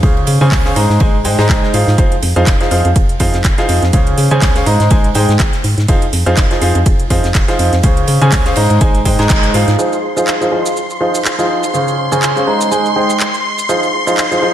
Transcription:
0.03 C#2 C#3 C#4 G#4 C5 F5, kick, ride
0.17 ride
0.27 C#3, open hi-hat, ride
0.41 C#3 C#4 G#4 C5 G#5
0.52 C#2, kick, snare, clap, open hi-hat
0.65 C#4 G#4 C5 F5, snare
0.76 G#2 G#3 D#4 G#4 C5 A#5, open hi-hat, ride
0.90 G#2, snare
1.00 G#1 G#3 D#4 G#4 C5 G#5, kick, ride
1.25 G#2 G#3 D#4 G#4 C5 G5, open hi-hat, ride
1.38 G#2 G#3 D#4 G#4 C5 A#5, snare
1.49 G#1, kick, snare, clap, ride
1.63 snare
1.74 G#2 F3 D#4 G#4 C5 F5, open hi-hat, ride
1.87 G#2, snare
1.98 F1 F3 D#4 G#4 C5 F5, kick, closed hi-hat, ride
2.12 closed hi-hat, ride
2.22 F2, open hi-hat, ride
2.36 F2 F3 D#4 G#4 C5 F5, closed hi-hat
2.47 F1, kick, snare, clap, closed hi-hat, ride
2.61 F3 D#4 G#4 C5 F5, snare, closed hi-hat
2.71 F2 F3 D#4 G#4 C5 F5, open hi-hat, ride
2.85 F2, closed hi-hat, ride
2.96 F1, kick, closed hi-hat, ride
3.09 closed hi-hat
3.20 F2 F3 D#4 G#4 C5 F5, kick, open hi-hat, ride
3.34 F2, snare, closed hi-hat
3.44 F1, kick, snare, clap, closed hi-hat, ride
3.58 F3 D#4 G#4 C5 F5, snare, closed hi-hat
3.69 F2, open hi-hat, ride
3.82 F2, snare, closed hi-hat
3.93 C#2 C#3 C#4 G#4 C5 F5, kick, closed hi-hat, ride
4.07 closed hi-hat, ride
4.18 C#3, open hi-hat, ride
4.31 C#3 C#4 G#4 C5 G#5, closed hi-hat
4.42 C#2, kick, snare, clap, closed hi-hat, open hi-hat
4.55 C#4 G#4 C5 F5, snare, closed hi-hat
4.66 G#2 G#3 D#4 G#4 C5 A#5, open hi-hat, ride
4.80 G#2, snare, closed hi-hat
4.90 G#1 G#3 D#4 G#4 C5 G#5, kick, closed hi-hat, ride
5.04 closed hi-hat
5.14 G#2 G#3 D#4 G#4 C5 G5, open hi-hat, ride
5.29 G#2, snare, closed hi-hat
5.39 G#1, kick, snare, clap, closed hi-hat, ride
5.53 snare, closed hi-hat
5.64 G#2, open hi-hat, ride
5.78 G#2, snare, closed hi-hat
5.88 F1 F3 D#4 G#4 C5 F5, kick, closed hi-hat, ride
6.02 closed hi-hat, ride
6.13 F2, open hi-hat, ride
6.26 F2 F3 D#4 G#4 C5 F5, closed hi-hat
6.37 F1, kick, snare, clap, closed hi-hat, ride
6.51 F3 D#4 G#4 C5 F5, snare, closed hi-hat
6.62 F2 F3 D#4 G#4 C5 F5, open hi-hat, ride
6.75 F2, closed hi-hat, ride
6.86 F1, kick, closed hi-hat, ride
7.00 closed hi-hat
7.10 F2 F3 D#4 G#4 C5 F5, kick, open hi-hat, ride
7.24 F2, snare, closed hi-hat
7.34 F1, kick, snare, clap, closed hi-hat, ride
7.48 F3 D#4 G#4 C5 F5, snare, closed hi-hat
7.59 F2, open hi-hat, ride
7.72 F2, snare, closed hi-hat
7.83 C#2 C#3 C#4 G#4 C5 F5, kick, closed hi-hat, ride
7.97 closed hi-hat, ride
8.07 C#3, open hi-hat, ride
8.21 C#3 C#4 G#4 C5 G#5, closed hi-hat
8.32 C#2, kick, snare, clap, closed hi-hat, open hi-hat
8.45 C#4 G#4 C5 F5, snare, closed hi-hat
8.56 G#2 G#3 D#4 G#4 C5 A#5, open hi-hat, ride
8.70 G#2, closed hi-hat, ride
8.81 G#1 G#3 D#4 G#4 C5 G#5, kick, closed hi-hat, ride
8.95 closed hi-hat
9.05 G#2 G#3 D#4 G#4 C5 G5, kick, open hi-hat, ride
9.19 G#2 G#3 D#4 G#4 C5 A#5, snare, closed hi-hat
9.29 G#1, kick, snare, clap, closed hi-hat, ride
9.43 snare, closed hi-hat
9.54 G#2 F3 D#4 G#4 C5 F5, open hi-hat, ride
9.68 G#2, snare, closed hi-hat
9.78 F3 D#4 G#4 C5 F5 C6, shaker
9.93 shaker
10.17 F3 D#4 G#4 C5 F5, shaker
10.27 clap, shaker
10.41 F3 D#4 G#4 C5 F5, shaker
10.52 F3 D#4 G#4 C5 F5
10.66 shaker
10.77 shaker
10.90 shaker
11.01 F3 D#4 G#4 C5 F5
11.15 shaker
11.25 clap, shaker
11.38 F3 D#4 G#4 C5 F5, shaker
11.63 snare, shaker
11.74 C#3 C#4 G#4 C5 F5, shaker
11.88 shaker
12.12 C#3 C#4 G#4 C5 G#5, shaker
12.22 clap, open hi-hat, shaker
12.36 C#4 G#4 C5 F5, shaker
12.47 G#3 D#4 G#4 C5 A#5
12.61 shaker
12.71 G#3 D#4 G#4 C5 G#5, shaker
12.85 shaker
12.96 G#3 D#4 G#4 C5 G5
13.10 shaker
13.20 clap, shaker
13.34 snare, shaker
13.44 ride
13.58 snare, shaker
13.69 F3 D#4 G#4 C5 F5, shaker
13.83 shaker
14.07 F3 D#4 G#4 C5 F5, shaker
14.18 clap, shaker
14.31 F3 D#4 G#4 C5 F5, shaker
14.42 F3 D#4 G#4 C5 F5

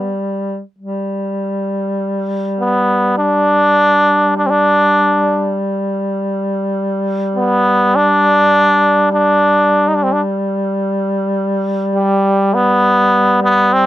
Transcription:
Already playing: G3 B3
0.79 G3
2.61 B3
3.19 D4
4.37 D4
4.46 C4 D4
7.36 B3
7.96 D4
9.13 D4
9.88 D#4
9.95 D4
10.03 C4
10.12 D4
11.95 G3
12.54 B3
13.43 B3
13.73 C4

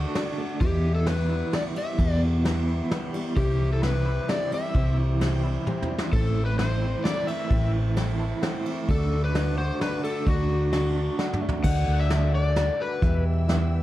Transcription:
Already playing: D3 A3 D4 F#4 A4 D5 F#5 D6
0.14 D3 A3 D4 F#4 A4 D5, snare, ride
0.37 A3 D4 F#4
0.60 E2 B2 E3 G3 B3 E4 G4 B4, kick, ride
0.84 E3
0.95 A4
1.05 E3 G3 B3 E4 G4 B4, snare, ride
1.29 E3 G3 B3 E4
1.51 E3 G3 B3 E4 G4 B4 D5, snare, ride
1.75 G3 E5, ride
1.98 E2 B2 E3 G3 B3 E4 G4 B4, kick, ride
2.21 E3
2.43 E3 G3 B3 E4 G4 B4, snare, ride
2.67 E4
2.89 E3 G3 B3 E4 G4 B4, snare, ride
3.12 E3 G3 B3 E4, ride
3.36 C2 C3 E3 G3 C4 E4 G4 C5, kick, ride
3.60 E3
3.73 A4
3.82 E3 G3 C4 E4 G4 B4, snare, ride
4.06 E4
4.28 E3 G3 C4 E4 G4 C5 D5, snare, ride
4.52 G3 C4 E4 E5, ride
4.74 C2 C3 E3 G3 C4 E4 G4 C5, kick, ride
4.97 E3
5.19 E3 G3 C4 E4 G4 C5, snare, ride
5.43 G3 C4 E4
5.66 E3 G3 C4 E4 G4 C5, high tom
5.82 mid tom
5.90 G3
5.98 snare
6.12 A1 A2 E3 A3 C4 E4 A4 C5, kick, ride
6.35 E3
6.46 B4
6.58 E3 A3 C4 E4 A4 C5, snare, ride
6.81 A3 C4 E4
7.04 E3 A3 C4 E4 A4 D5, snare, ride
7.27 A3 E5, ride
7.50 A1 A2 E3 A3 C4 E4 A4 C5, kick, ride
7.73 E3
7.96 E3 A3 C4 E4 A4 C5, snare, ride
8.19 E4 A5
8.41 E3 A3 C4 E4 A4 C5 F#5, snare, ride
8.65 A3 C4 E4 E5, ride
8.88 D2 D3 A3 D4 F#4 A4 D5, kick, ride
9.11 D3
9.24 B4
9.33 D3 A3 D4 F#4 A4 D5, snare, ride
9.56 A3 D4 F#4 C5
9.79 D3 A3 D4 F#4 A4 B4 D5, snare, ride
10.04 A3 A4, ride
10.26 D2 D3 A3 D4 F#4 A4 D5, kick, ride
10.49 D3
10.71 D3 A3 D4 F#4 A4 D5, snare, ride
10.96 F#4 A5
11.18 D3 A3 D4 F#4 A4 D5 F#5, snare
11.33 mid tom
11.41 A3 D4 F#4 E5
11.49 floor tom
11.64 D2 D3 A3 D4 F#4 A4 D5 F#5 D6, kick, crash
11.88 D2
12.00 E5
12.09 D3 A3 D4 F#4 A4 D5, snare, closed hi-hat
12.32 A3 D4 F#4 D5
12.55 D3 A3 D4 F#4 A4 D5, snare, closed hi-hat
12.81 B4
13.01 E2 B2 E3 G3 B3 E4 G4 B4 E5 G5 E6, kick, closed hi-hat
13.48 E3 G3 B3 E4 G4 B4 E5, snare, closed hi-hat

